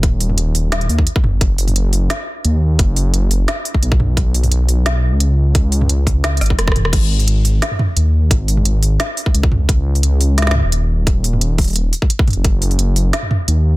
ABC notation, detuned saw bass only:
X:1
M:4/4
L:1/16
Q:"Swing 16ths" 1/4=174
K:G#m
V:1 name="Detuned saw bass" clef=bass
D,,,8- D,,,2 D,,2 z2 F,,, G,,, | F,,,8 z4 D,,4 | F,,,8 z4 B,,,4- | B,,,8- B,,,3 C,,4- C,,- |
C,,8- C,,2 G,,,2 E,,,4 | G,,,8 z4 D,,4 | G,,,8 z4 C,,4- | C,,8- C,,3 D,,,4- D,,,- |
D,,,8- D,,,2 z4 z F,,, | F,,,8 z4 D,,4 |]